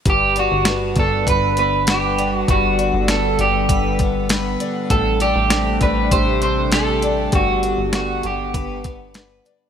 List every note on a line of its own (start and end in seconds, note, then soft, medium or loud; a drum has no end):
0.06 0.49 G1 medium
0.06 2.48 G2 medium
0.06 4.87 D3 medium
0.06 9.70 G3 medium
0.06 4.87 B3 medium
0.06 2.46 B4 medium
0.06 4.87 F#5 medium
0.06 kick medium
0.06 closed hi-hat medium
0.10 0.39 G4 medium
0.36 0.97 D4 medium
0.36 0.99 F#4 medium
0.36 closed hi-hat soft
0.52 0.95 G1 medium
0.65 1.57 B3 medium
0.65 snare loud
0.65 closed hi-hat medium
0.96 1.25 G1 medium
0.96 2.18 D4 soft
0.96 1.29 A4 medium
0.96 kick medium
0.96 closed hi-hat soft
1.27 2.44 G1 loud
1.27 1.87 B4 medium
1.27 1.58 B4 medium
1.27 kick medium
1.27 closed hi-hat medium
1.57 3.09 B3 medium
1.57 1.89 B4 medium
1.57 closed hi-hat medium
1.87 2.34 G4 medium
1.87 3.69 B4 medium
1.87 snare loud
1.87 closed hi-hat medium
2.19 2.78 D4 medium
2.19 closed hi-hat soft
2.34 2.50 F#4 medium
2.48 2.92 G1 loud
2.48 4.91 G2 medium
2.48 3.10 F#4 medium
2.48 4.89 A4 medium
2.48 kick medium
2.48 closed hi-hat medium
2.79 3.39 D4 medium
2.79 closed hi-hat soft
2.94 3.37 G1 medium
3.08 3.99 B3 medium
3.08 3.40 A4 medium
3.08 snare loud
3.08 closed hi-hat medium
3.39 3.68 G1 medium
3.39 4.60 D4 soft
3.39 3.97 G4 medium
3.39 closed hi-hat medium
3.69 4.56 G1 medium
3.69 4.30 B4 medium
3.69 kick medium
3.69 closed hi-hat medium
3.99 4.97 B3 medium
3.99 kick medium
3.99 closed hi-hat soft
4.29 4.97 B4 medium
4.29 snare loud
4.29 closed hi-hat medium
4.60 5.21 D4 medium
4.60 closed hi-hat medium
4.90 5.34 A1 loud
4.90 7.32 A2 medium
4.90 7.31 C3 medium
4.90 7.31 A3 medium
4.90 7.31 D4 medium
4.90 5.21 A4 medium
4.90 9.70 A4 medium
4.90 kick medium
4.90 closed hi-hat medium
5.20 5.80 D4 medium
5.20 5.78 G4 medium
5.20 closed hi-hat soft
5.36 5.79 A1 medium
5.50 6.41 C4 medium
5.50 snare loud
5.50 closed hi-hat medium
5.81 6.10 A1 medium
5.81 7.03 D4 medium
5.81 6.12 B4 medium
5.81 kick medium
5.81 closed hi-hat medium
6.11 7.29 A1 loud
6.11 6.72 G4 medium
6.11 6.42 C5 loud
6.11 kick medium
6.11 closed hi-hat medium
6.42 7.39 C4 medium
6.42 6.73 C5 medium
6.42 closed hi-hat medium
6.72 8.54 G4 medium
6.72 7.35 A4 medium
6.72 snare loud
6.72 closed hi-hat medium
7.02 7.63 D4 medium
7.02 closed hi-hat medium
7.32 7.76 G1 medium
7.32 9.70 G2 medium
7.32 9.70 D3 medium
7.32 9.70 B3 medium
7.32 7.94 F#4 medium
7.32 9.70 F#5 medium
7.32 kick loud
7.32 closed hi-hat medium
7.63 8.23 D4 medium
7.63 closed hi-hat soft
7.78 8.22 G1 medium
7.93 8.85 B3 medium
7.93 8.26 F#4 medium
7.93 snare loud
7.93 closed hi-hat medium
8.23 8.53 G1 medium
8.23 9.45 D4 medium
8.23 8.82 G4 medium
8.23 closed hi-hat medium
8.54 9.41 G1 medium
8.54 9.15 B4 medium
8.54 kick medium
8.54 closed hi-hat medium
8.84 9.70 B3 medium
8.84 kick medium
8.84 closed hi-hat medium
9.14 9.70 B4 medium
9.14 snare loud
9.14 closed hi-hat medium
9.45 9.70 D4 medium
9.45 closed hi-hat soft